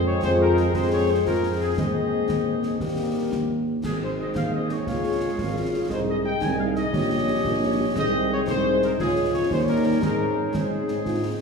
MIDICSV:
0, 0, Header, 1, 8, 480
1, 0, Start_track
1, 0, Key_signature, -4, "major"
1, 0, Tempo, 344037
1, 1028, Time_signature, 6, 3, 24, 8
1, 15922, End_track
2, 0, Start_track
2, 0, Title_t, "Trumpet section"
2, 0, Program_c, 0, 61
2, 66, Note_on_c, 0, 73, 83
2, 290, Note_off_c, 0, 73, 0
2, 310, Note_on_c, 0, 72, 101
2, 418, Note_off_c, 0, 72, 0
2, 552, Note_on_c, 0, 70, 88
2, 997, Note_off_c, 0, 70, 0
2, 1030, Note_on_c, 0, 72, 104
2, 1270, Note_off_c, 0, 72, 0
2, 1278, Note_on_c, 0, 73, 87
2, 1497, Note_off_c, 0, 73, 0
2, 1509, Note_on_c, 0, 72, 78
2, 1749, Note_off_c, 0, 72, 0
2, 1755, Note_on_c, 0, 70, 85
2, 2199, Note_off_c, 0, 70, 0
2, 2232, Note_on_c, 0, 68, 73
2, 2454, Note_off_c, 0, 68, 0
2, 2484, Note_on_c, 0, 75, 75
2, 4582, Note_off_c, 0, 75, 0
2, 5362, Note_on_c, 0, 68, 80
2, 5467, Note_off_c, 0, 68, 0
2, 5597, Note_on_c, 0, 72, 73
2, 5704, Note_off_c, 0, 72, 0
2, 5846, Note_on_c, 0, 75, 68
2, 5951, Note_off_c, 0, 75, 0
2, 6071, Note_on_c, 0, 77, 82
2, 6294, Note_off_c, 0, 77, 0
2, 6319, Note_on_c, 0, 75, 73
2, 6555, Note_off_c, 0, 75, 0
2, 6555, Note_on_c, 0, 73, 80
2, 8226, Note_on_c, 0, 72, 91
2, 8232, Note_off_c, 0, 73, 0
2, 8335, Note_off_c, 0, 72, 0
2, 8482, Note_on_c, 0, 75, 78
2, 8588, Note_off_c, 0, 75, 0
2, 8711, Note_on_c, 0, 79, 80
2, 8934, Note_off_c, 0, 79, 0
2, 8953, Note_on_c, 0, 80, 82
2, 9191, Note_on_c, 0, 77, 74
2, 9192, Note_off_c, 0, 80, 0
2, 9298, Note_off_c, 0, 77, 0
2, 9426, Note_on_c, 0, 75, 89
2, 11052, Note_off_c, 0, 75, 0
2, 11114, Note_on_c, 0, 75, 98
2, 11558, Note_off_c, 0, 75, 0
2, 11595, Note_on_c, 0, 73, 95
2, 11702, Note_off_c, 0, 73, 0
2, 11833, Note_on_c, 0, 72, 95
2, 12278, Note_off_c, 0, 72, 0
2, 12314, Note_on_c, 0, 70, 79
2, 12421, Note_off_c, 0, 70, 0
2, 12550, Note_on_c, 0, 68, 87
2, 12996, Note_off_c, 0, 68, 0
2, 13038, Note_on_c, 0, 73, 85
2, 13257, Note_off_c, 0, 73, 0
2, 13270, Note_on_c, 0, 72, 89
2, 13378, Note_off_c, 0, 72, 0
2, 13511, Note_on_c, 0, 70, 81
2, 13734, Note_off_c, 0, 70, 0
2, 13754, Note_on_c, 0, 70, 81
2, 13975, Note_off_c, 0, 70, 0
2, 13995, Note_on_c, 0, 70, 85
2, 14662, Note_off_c, 0, 70, 0
2, 14720, Note_on_c, 0, 68, 68
2, 15922, Note_off_c, 0, 68, 0
2, 15922, End_track
3, 0, Start_track
3, 0, Title_t, "Woodwind section"
3, 0, Program_c, 1, 71
3, 0, Note_on_c, 1, 68, 84
3, 0, Note_on_c, 1, 72, 75
3, 2410, Note_off_c, 1, 68, 0
3, 2413, Note_off_c, 1, 72, 0
3, 2463, Note_on_c, 1, 72, 56
3, 2464, Note_on_c, 1, 68, 64
3, 3851, Note_off_c, 1, 72, 0
3, 3852, Note_off_c, 1, 68, 0
3, 3902, Note_on_c, 1, 70, 54
3, 3904, Note_on_c, 1, 67, 59
3, 5106, Note_off_c, 1, 70, 0
3, 5108, Note_off_c, 1, 67, 0
3, 5349, Note_on_c, 1, 72, 63
3, 5350, Note_on_c, 1, 68, 66
3, 6734, Note_off_c, 1, 72, 0
3, 6787, Note_on_c, 1, 77, 69
3, 8174, Note_off_c, 1, 68, 0
3, 8228, Note_on_c, 1, 75, 63
3, 8229, Note_off_c, 1, 77, 0
3, 8231, Note_on_c, 1, 68, 60
3, 9613, Note_off_c, 1, 75, 0
3, 9614, Note_off_c, 1, 68, 0
3, 9667, Note_on_c, 1, 73, 64
3, 9669, Note_on_c, 1, 67, 68
3, 11052, Note_off_c, 1, 73, 0
3, 11098, Note_on_c, 1, 72, 78
3, 11100, Note_on_c, 1, 68, 70
3, 11110, Note_off_c, 1, 67, 0
3, 12488, Note_off_c, 1, 72, 0
3, 12489, Note_off_c, 1, 68, 0
3, 12534, Note_on_c, 1, 65, 76
3, 12535, Note_on_c, 1, 73, 72
3, 13259, Note_on_c, 1, 67, 64
3, 13262, Note_off_c, 1, 65, 0
3, 13980, Note_on_c, 1, 72, 64
3, 13983, Note_off_c, 1, 73, 0
3, 13984, Note_off_c, 1, 67, 0
3, 13985, Note_on_c, 1, 68, 60
3, 15922, Note_off_c, 1, 68, 0
3, 15922, Note_off_c, 1, 72, 0
3, 15922, End_track
4, 0, Start_track
4, 0, Title_t, "Euphonium"
4, 0, Program_c, 2, 58
4, 0, Note_on_c, 2, 68, 81
4, 254, Note_off_c, 2, 68, 0
4, 303, Note_on_c, 2, 65, 73
4, 1028, Note_on_c, 2, 68, 85
4, 1048, Note_off_c, 2, 65, 0
4, 1746, Note_off_c, 2, 68, 0
4, 1754, Note_on_c, 2, 65, 67
4, 2422, Note_off_c, 2, 65, 0
4, 2466, Note_on_c, 2, 60, 64
4, 4933, Note_off_c, 2, 60, 0
4, 5347, Note_on_c, 2, 63, 61
4, 6733, Note_off_c, 2, 63, 0
4, 6798, Note_on_c, 2, 65, 67
4, 8178, Note_off_c, 2, 65, 0
4, 8237, Note_on_c, 2, 68, 77
4, 8903, Note_off_c, 2, 68, 0
4, 8950, Note_on_c, 2, 63, 67
4, 9619, Note_off_c, 2, 63, 0
4, 9675, Note_on_c, 2, 67, 73
4, 10342, Note_off_c, 2, 67, 0
4, 10386, Note_on_c, 2, 65, 75
4, 10495, Note_off_c, 2, 65, 0
4, 10626, Note_on_c, 2, 63, 62
4, 10867, Note_on_c, 2, 67, 67
4, 10888, Note_off_c, 2, 63, 0
4, 11099, Note_off_c, 2, 67, 0
4, 11107, Note_on_c, 2, 68, 85
4, 11778, Note_off_c, 2, 68, 0
4, 11823, Note_on_c, 2, 63, 71
4, 12551, Note_on_c, 2, 65, 78
4, 12572, Note_off_c, 2, 63, 0
4, 13270, Note_on_c, 2, 63, 71
4, 13291, Note_off_c, 2, 65, 0
4, 13990, Note_off_c, 2, 63, 0
4, 13996, Note_on_c, 2, 63, 59
4, 14618, Note_off_c, 2, 63, 0
4, 14712, Note_on_c, 2, 56, 68
4, 14820, Note_off_c, 2, 56, 0
4, 14957, Note_on_c, 2, 60, 60
4, 15064, Note_off_c, 2, 60, 0
4, 15198, Note_on_c, 2, 63, 62
4, 15418, Note_off_c, 2, 63, 0
4, 15433, Note_on_c, 2, 65, 73
4, 15680, Note_on_c, 2, 63, 61
4, 15701, Note_off_c, 2, 65, 0
4, 15911, Note_off_c, 2, 63, 0
4, 15922, End_track
5, 0, Start_track
5, 0, Title_t, "French horn section"
5, 0, Program_c, 3, 60
5, 0, Note_on_c, 3, 56, 63
5, 0, Note_on_c, 3, 60, 67
5, 0, Note_on_c, 3, 68, 64
5, 259, Note_off_c, 3, 68, 0
5, 261, Note_off_c, 3, 56, 0
5, 261, Note_off_c, 3, 60, 0
5, 309, Note_on_c, 3, 56, 59
5, 309, Note_on_c, 3, 60, 53
5, 311, Note_on_c, 3, 68, 63
5, 979, Note_off_c, 3, 56, 0
5, 979, Note_off_c, 3, 60, 0
5, 980, Note_off_c, 3, 68, 0
5, 1040, Note_on_c, 3, 56, 58
5, 1040, Note_on_c, 3, 68, 61
5, 1042, Note_on_c, 3, 60, 64
5, 2420, Note_off_c, 3, 56, 0
5, 2420, Note_off_c, 3, 68, 0
5, 2421, Note_off_c, 3, 60, 0
5, 2464, Note_on_c, 3, 68, 49
5, 2465, Note_on_c, 3, 60, 58
5, 2466, Note_on_c, 3, 56, 53
5, 3852, Note_off_c, 3, 60, 0
5, 3852, Note_off_c, 3, 68, 0
5, 3853, Note_off_c, 3, 56, 0
5, 3912, Note_on_c, 3, 58, 49
5, 3912, Note_on_c, 3, 63, 52
5, 3914, Note_on_c, 3, 67, 57
5, 5056, Note_off_c, 3, 58, 0
5, 5056, Note_off_c, 3, 63, 0
5, 5057, Note_off_c, 3, 67, 0
5, 5598, Note_on_c, 3, 60, 47
5, 5600, Note_on_c, 3, 68, 45
5, 5601, Note_on_c, 3, 63, 44
5, 5682, Note_off_c, 3, 60, 0
5, 5685, Note_off_c, 3, 63, 0
5, 5685, Note_off_c, 3, 68, 0
5, 5833, Note_on_c, 3, 68, 45
5, 5834, Note_on_c, 3, 63, 54
5, 5835, Note_on_c, 3, 60, 52
5, 5919, Note_off_c, 3, 68, 0
5, 5920, Note_off_c, 3, 60, 0
5, 5920, Note_off_c, 3, 63, 0
5, 6311, Note_on_c, 3, 63, 49
5, 6312, Note_on_c, 3, 68, 50
5, 6313, Note_on_c, 3, 60, 52
5, 6397, Note_off_c, 3, 63, 0
5, 6398, Note_off_c, 3, 68, 0
5, 6399, Note_off_c, 3, 60, 0
5, 6554, Note_on_c, 3, 63, 50
5, 6555, Note_on_c, 3, 60, 51
5, 6555, Note_on_c, 3, 68, 49
5, 6640, Note_off_c, 3, 63, 0
5, 6640, Note_off_c, 3, 68, 0
5, 6641, Note_off_c, 3, 60, 0
5, 7028, Note_on_c, 3, 65, 51
5, 7031, Note_on_c, 3, 68, 49
5, 7034, Note_on_c, 3, 61, 46
5, 7115, Note_off_c, 3, 65, 0
5, 7117, Note_off_c, 3, 68, 0
5, 7119, Note_off_c, 3, 61, 0
5, 7271, Note_on_c, 3, 65, 47
5, 7271, Note_on_c, 3, 68, 49
5, 7273, Note_on_c, 3, 61, 52
5, 7357, Note_off_c, 3, 65, 0
5, 7358, Note_off_c, 3, 68, 0
5, 7359, Note_off_c, 3, 61, 0
5, 7755, Note_on_c, 3, 68, 45
5, 7756, Note_on_c, 3, 61, 45
5, 7758, Note_on_c, 3, 65, 48
5, 7840, Note_off_c, 3, 68, 0
5, 7841, Note_off_c, 3, 61, 0
5, 7843, Note_off_c, 3, 65, 0
5, 7996, Note_on_c, 3, 61, 46
5, 7997, Note_on_c, 3, 68, 53
5, 7998, Note_on_c, 3, 65, 48
5, 8081, Note_off_c, 3, 61, 0
5, 8082, Note_off_c, 3, 65, 0
5, 8082, Note_off_c, 3, 68, 0
5, 8476, Note_on_c, 3, 63, 49
5, 8477, Note_on_c, 3, 68, 49
5, 8479, Note_off_c, 3, 63, 0
5, 8479, Note_on_c, 3, 63, 49
5, 8562, Note_off_c, 3, 68, 0
5, 8563, Note_off_c, 3, 63, 0
5, 8725, Note_on_c, 3, 68, 51
5, 8726, Note_on_c, 3, 63, 53
5, 8727, Note_off_c, 3, 63, 0
5, 8727, Note_on_c, 3, 63, 53
5, 8808, Note_off_c, 3, 68, 0
5, 8810, Note_off_c, 3, 63, 0
5, 9198, Note_on_c, 3, 63, 53
5, 9201, Note_on_c, 3, 68, 52
5, 9202, Note_off_c, 3, 63, 0
5, 9202, Note_on_c, 3, 63, 56
5, 9285, Note_off_c, 3, 68, 0
5, 9286, Note_off_c, 3, 63, 0
5, 9438, Note_on_c, 3, 63, 51
5, 9439, Note_off_c, 3, 63, 0
5, 9439, Note_on_c, 3, 63, 55
5, 9440, Note_on_c, 3, 68, 59
5, 9523, Note_off_c, 3, 63, 0
5, 9524, Note_off_c, 3, 68, 0
5, 9905, Note_on_c, 3, 61, 51
5, 9908, Note_on_c, 3, 63, 55
5, 9911, Note_on_c, 3, 67, 50
5, 9992, Note_off_c, 3, 61, 0
5, 9995, Note_off_c, 3, 63, 0
5, 9997, Note_off_c, 3, 67, 0
5, 10144, Note_on_c, 3, 61, 59
5, 10145, Note_on_c, 3, 67, 56
5, 10148, Note_on_c, 3, 63, 54
5, 10232, Note_off_c, 3, 61, 0
5, 10232, Note_off_c, 3, 67, 0
5, 10235, Note_off_c, 3, 63, 0
5, 10622, Note_on_c, 3, 61, 56
5, 10625, Note_on_c, 3, 67, 55
5, 10626, Note_on_c, 3, 63, 62
5, 10711, Note_off_c, 3, 61, 0
5, 10713, Note_off_c, 3, 63, 0
5, 10713, Note_off_c, 3, 67, 0
5, 10863, Note_on_c, 3, 67, 57
5, 10864, Note_on_c, 3, 61, 55
5, 10866, Note_on_c, 3, 63, 58
5, 10951, Note_off_c, 3, 67, 0
5, 10952, Note_off_c, 3, 61, 0
5, 10953, Note_off_c, 3, 63, 0
5, 11109, Note_on_c, 3, 68, 70
5, 11110, Note_on_c, 3, 60, 69
5, 11111, Note_on_c, 3, 63, 66
5, 11779, Note_off_c, 3, 60, 0
5, 11779, Note_off_c, 3, 68, 0
5, 11780, Note_off_c, 3, 63, 0
5, 11835, Note_on_c, 3, 60, 70
5, 11836, Note_on_c, 3, 63, 64
5, 11838, Note_on_c, 3, 68, 65
5, 12502, Note_off_c, 3, 60, 0
5, 12503, Note_off_c, 3, 63, 0
5, 12504, Note_off_c, 3, 68, 0
5, 12553, Note_on_c, 3, 61, 74
5, 12557, Note_on_c, 3, 56, 65
5, 12558, Note_on_c, 3, 65, 72
5, 13250, Note_off_c, 3, 61, 0
5, 13267, Note_on_c, 3, 55, 55
5, 13267, Note_on_c, 3, 61, 57
5, 13270, Note_on_c, 3, 63, 62
5, 13274, Note_off_c, 3, 56, 0
5, 13274, Note_off_c, 3, 65, 0
5, 13938, Note_off_c, 3, 61, 0
5, 13979, Note_off_c, 3, 63, 0
5, 13989, Note_off_c, 3, 55, 0
5, 13996, Note_on_c, 3, 56, 57
5, 13996, Note_on_c, 3, 63, 55
5, 14000, Note_on_c, 3, 60, 53
5, 14663, Note_off_c, 3, 56, 0
5, 14663, Note_off_c, 3, 63, 0
5, 14665, Note_off_c, 3, 60, 0
5, 14709, Note_on_c, 3, 63, 55
5, 14710, Note_on_c, 3, 60, 56
5, 14712, Note_on_c, 3, 56, 50
5, 15922, Note_off_c, 3, 56, 0
5, 15922, Note_off_c, 3, 60, 0
5, 15922, Note_off_c, 3, 63, 0
5, 15922, End_track
6, 0, Start_track
6, 0, Title_t, "Trombone section"
6, 0, Program_c, 4, 61
6, 0, Note_on_c, 4, 56, 78
6, 0, Note_on_c, 4, 60, 71
6, 2415, Note_off_c, 4, 56, 0
6, 2415, Note_off_c, 4, 60, 0
6, 2474, Note_on_c, 4, 60, 54
6, 2476, Note_on_c, 4, 56, 58
6, 3857, Note_off_c, 4, 60, 0
6, 3858, Note_off_c, 4, 56, 0
6, 3909, Note_on_c, 4, 55, 48
6, 3911, Note_on_c, 4, 58, 48
6, 5055, Note_off_c, 4, 58, 0
6, 5110, Note_off_c, 4, 55, 0
6, 5357, Note_on_c, 4, 56, 58
6, 5357, Note_on_c, 4, 60, 54
6, 6738, Note_off_c, 4, 60, 0
6, 6783, Note_on_c, 4, 65, 59
6, 8178, Note_off_c, 4, 56, 0
6, 8227, Note_off_c, 4, 65, 0
6, 8231, Note_on_c, 4, 56, 52
6, 8232, Note_on_c, 4, 63, 58
6, 9614, Note_off_c, 4, 56, 0
6, 9615, Note_off_c, 4, 63, 0
6, 9679, Note_on_c, 4, 61, 68
6, 9680, Note_on_c, 4, 55, 60
6, 11059, Note_off_c, 4, 55, 0
6, 11108, Note_on_c, 4, 60, 66
6, 11109, Note_on_c, 4, 56, 62
6, 11114, Note_off_c, 4, 61, 0
6, 12493, Note_off_c, 4, 60, 0
6, 12543, Note_on_c, 4, 53, 66
6, 12545, Note_on_c, 4, 61, 75
6, 12550, Note_off_c, 4, 56, 0
6, 13216, Note_off_c, 4, 53, 0
6, 13265, Note_on_c, 4, 55, 57
6, 13988, Note_off_c, 4, 55, 0
6, 13991, Note_on_c, 4, 56, 60
6, 15419, Note_on_c, 4, 60, 53
6, 15428, Note_off_c, 4, 61, 0
6, 15922, Note_off_c, 4, 56, 0
6, 15922, Note_off_c, 4, 60, 0
6, 15922, End_track
7, 0, Start_track
7, 0, Title_t, "Tuba"
7, 0, Program_c, 5, 58
7, 0, Note_on_c, 5, 41, 74
7, 221, Note_off_c, 5, 41, 0
7, 304, Note_on_c, 5, 41, 75
7, 942, Note_off_c, 5, 41, 0
7, 1024, Note_on_c, 5, 41, 72
7, 1662, Note_off_c, 5, 41, 0
7, 1742, Note_on_c, 5, 41, 64
7, 2381, Note_off_c, 5, 41, 0
7, 2467, Note_on_c, 5, 39, 54
7, 3104, Note_off_c, 5, 39, 0
7, 3194, Note_on_c, 5, 39, 61
7, 3827, Note_off_c, 5, 39, 0
7, 3910, Note_on_c, 5, 39, 53
7, 4545, Note_off_c, 5, 39, 0
7, 4632, Note_on_c, 5, 39, 58
7, 5267, Note_off_c, 5, 39, 0
7, 5357, Note_on_c, 5, 32, 56
7, 5954, Note_off_c, 5, 32, 0
7, 6076, Note_on_c, 5, 39, 59
7, 6673, Note_off_c, 5, 39, 0
7, 6789, Note_on_c, 5, 37, 67
7, 7390, Note_off_c, 5, 37, 0
7, 7505, Note_on_c, 5, 32, 69
7, 8108, Note_off_c, 5, 32, 0
7, 8221, Note_on_c, 5, 36, 67
7, 8825, Note_off_c, 5, 36, 0
7, 8950, Note_on_c, 5, 36, 75
7, 9550, Note_off_c, 5, 36, 0
7, 9661, Note_on_c, 5, 34, 65
7, 10265, Note_off_c, 5, 34, 0
7, 10385, Note_on_c, 5, 34, 73
7, 10923, Note_off_c, 5, 34, 0
7, 11104, Note_on_c, 5, 36, 73
7, 11742, Note_off_c, 5, 36, 0
7, 11822, Note_on_c, 5, 36, 74
7, 12461, Note_off_c, 5, 36, 0
7, 12544, Note_on_c, 5, 37, 74
7, 13182, Note_off_c, 5, 37, 0
7, 13270, Note_on_c, 5, 39, 74
7, 13905, Note_off_c, 5, 39, 0
7, 13979, Note_on_c, 5, 44, 58
7, 14620, Note_off_c, 5, 44, 0
7, 14703, Note_on_c, 5, 44, 66
7, 15342, Note_off_c, 5, 44, 0
7, 15430, Note_on_c, 5, 44, 61
7, 15922, Note_off_c, 5, 44, 0
7, 15922, End_track
8, 0, Start_track
8, 0, Title_t, "Drums"
8, 309, Note_on_c, 9, 35, 72
8, 309, Note_on_c, 9, 38, 75
8, 448, Note_off_c, 9, 35, 0
8, 448, Note_off_c, 9, 38, 0
8, 797, Note_on_c, 9, 38, 53
8, 937, Note_off_c, 9, 38, 0
8, 1030, Note_on_c, 9, 35, 68
8, 1030, Note_on_c, 9, 38, 58
8, 1169, Note_off_c, 9, 35, 0
8, 1169, Note_off_c, 9, 38, 0
8, 1753, Note_on_c, 9, 35, 64
8, 1753, Note_on_c, 9, 38, 53
8, 1892, Note_off_c, 9, 35, 0
8, 1892, Note_off_c, 9, 38, 0
8, 2471, Note_on_c, 9, 35, 75
8, 2471, Note_on_c, 9, 38, 71
8, 2610, Note_off_c, 9, 35, 0
8, 2610, Note_off_c, 9, 38, 0
8, 3190, Note_on_c, 9, 35, 70
8, 3190, Note_on_c, 9, 38, 64
8, 3329, Note_off_c, 9, 35, 0
8, 3329, Note_off_c, 9, 38, 0
8, 3667, Note_on_c, 9, 38, 50
8, 3807, Note_off_c, 9, 38, 0
8, 3910, Note_on_c, 9, 35, 74
8, 3910, Note_on_c, 9, 38, 54
8, 4050, Note_off_c, 9, 35, 0
8, 4050, Note_off_c, 9, 38, 0
8, 4631, Note_on_c, 9, 35, 62
8, 4631, Note_on_c, 9, 38, 67
8, 4770, Note_off_c, 9, 35, 0
8, 4770, Note_off_c, 9, 38, 0
8, 5351, Note_on_c, 9, 35, 74
8, 5351, Note_on_c, 9, 38, 70
8, 5351, Note_on_c, 9, 49, 46
8, 5490, Note_off_c, 9, 35, 0
8, 5490, Note_off_c, 9, 38, 0
8, 5490, Note_off_c, 9, 49, 0
8, 6069, Note_on_c, 9, 35, 72
8, 6069, Note_on_c, 9, 38, 74
8, 6209, Note_off_c, 9, 35, 0
8, 6209, Note_off_c, 9, 38, 0
8, 6547, Note_on_c, 9, 38, 46
8, 6686, Note_off_c, 9, 38, 0
8, 6790, Note_on_c, 9, 35, 72
8, 6790, Note_on_c, 9, 38, 52
8, 6930, Note_off_c, 9, 35, 0
8, 6930, Note_off_c, 9, 38, 0
8, 7509, Note_on_c, 9, 35, 74
8, 7509, Note_on_c, 9, 38, 60
8, 7648, Note_off_c, 9, 35, 0
8, 7648, Note_off_c, 9, 38, 0
8, 8232, Note_on_c, 9, 35, 74
8, 8232, Note_on_c, 9, 38, 67
8, 8372, Note_off_c, 9, 35, 0
8, 8372, Note_off_c, 9, 38, 0
8, 8946, Note_on_c, 9, 35, 77
8, 8946, Note_on_c, 9, 38, 69
8, 9086, Note_off_c, 9, 35, 0
8, 9086, Note_off_c, 9, 38, 0
8, 9425, Note_on_c, 9, 38, 46
8, 9565, Note_off_c, 9, 38, 0
8, 9669, Note_on_c, 9, 35, 80
8, 9669, Note_on_c, 9, 38, 60
8, 9808, Note_off_c, 9, 35, 0
8, 9808, Note_off_c, 9, 38, 0
8, 10383, Note_on_c, 9, 35, 73
8, 10383, Note_on_c, 9, 38, 58
8, 10523, Note_off_c, 9, 35, 0
8, 10523, Note_off_c, 9, 38, 0
8, 11099, Note_on_c, 9, 35, 76
8, 11099, Note_on_c, 9, 38, 71
8, 11099, Note_on_c, 9, 49, 30
8, 11238, Note_off_c, 9, 35, 0
8, 11238, Note_off_c, 9, 38, 0
8, 11238, Note_off_c, 9, 49, 0
8, 11820, Note_on_c, 9, 35, 77
8, 11820, Note_on_c, 9, 38, 73
8, 11959, Note_off_c, 9, 35, 0
8, 11959, Note_off_c, 9, 38, 0
8, 12307, Note_on_c, 9, 38, 52
8, 12446, Note_off_c, 9, 38, 0
8, 12543, Note_on_c, 9, 35, 81
8, 12543, Note_on_c, 9, 38, 57
8, 12683, Note_off_c, 9, 35, 0
8, 12683, Note_off_c, 9, 38, 0
8, 13266, Note_on_c, 9, 35, 74
8, 13266, Note_on_c, 9, 38, 59
8, 13406, Note_off_c, 9, 35, 0
8, 13406, Note_off_c, 9, 38, 0
8, 13981, Note_on_c, 9, 35, 71
8, 13981, Note_on_c, 9, 38, 69
8, 14120, Note_off_c, 9, 35, 0
8, 14120, Note_off_c, 9, 38, 0
8, 14701, Note_on_c, 9, 35, 78
8, 14701, Note_on_c, 9, 38, 68
8, 14840, Note_off_c, 9, 35, 0
8, 14840, Note_off_c, 9, 38, 0
8, 15182, Note_on_c, 9, 38, 47
8, 15322, Note_off_c, 9, 38, 0
8, 15421, Note_on_c, 9, 35, 64
8, 15421, Note_on_c, 9, 38, 55
8, 15560, Note_off_c, 9, 35, 0
8, 15560, Note_off_c, 9, 38, 0
8, 15922, End_track
0, 0, End_of_file